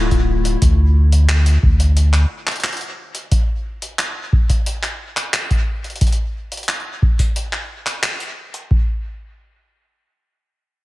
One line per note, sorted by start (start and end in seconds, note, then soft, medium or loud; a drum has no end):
0.00 0.57 D1 loud
0.00 0.62 D3 medium
0.00 0.62 A3 medium
0.00 0.62 E4 medium
0.00 0.62 F4 medium
0.11 kick medium
0.11 closed hi-hat soft
0.45 closed hi-hat medium
0.62 1.58 D2 loud
0.62 kick loud
0.62 closed hi-hat medium
1.12 closed hi-hat medium
1.29 clap loud
1.46 closed hi-hat medium
1.63 2.25 D2 medium
1.63 kick loud
1.80 closed hi-hat medium
1.97 closed hi-hat medium
2.14 clap medium
2.14 closed hi-hat soft
2.47 clap medium
2.47 closed hi-hat soft
2.51 closed hi-hat soft
2.56 closed hi-hat soft
2.60 closed hi-hat soft
2.64 clap loud
2.64 closed hi-hat medium
2.68 closed hi-hat soft
2.73 closed hi-hat soft
2.77 closed hi-hat soft
2.81 closed hi-hat soft
3.15 closed hi-hat medium
3.32 kick loud
3.32 closed hi-hat medium
3.82 closed hi-hat medium
3.99 clap loud
3.99 closed hi-hat medium
4.33 kick loud
4.50 kick medium
4.50 closed hi-hat soft
4.66 closed hi-hat medium
4.83 clap medium
4.83 closed hi-hat soft
5.17 clap medium
5.17 closed hi-hat soft
5.34 clap loud
5.34 closed hi-hat medium
5.51 kick medium
5.51 closed hi-hat soft
5.84 closed hi-hat soft
5.90 closed hi-hat soft
5.96 closed hi-hat soft
6.01 kick loud
6.01 closed hi-hat medium
6.07 closed hi-hat soft
6.12 closed hi-hat soft
6.52 closed hi-hat soft
6.57 closed hi-hat soft
6.63 closed hi-hat soft
6.69 clap loud
6.69 closed hi-hat medium
6.74 closed hi-hat soft
6.80 closed hi-hat soft
7.02 kick loud
7.19 kick medium
7.19 closed hi-hat soft
7.36 closed hi-hat medium
7.53 clap medium
7.87 clap medium
7.87 closed hi-hat soft
8.03 clap loud
8.03 closed hi-hat medium
8.20 closed hi-hat soft
8.54 closed hi-hat soft
8.71 kick loud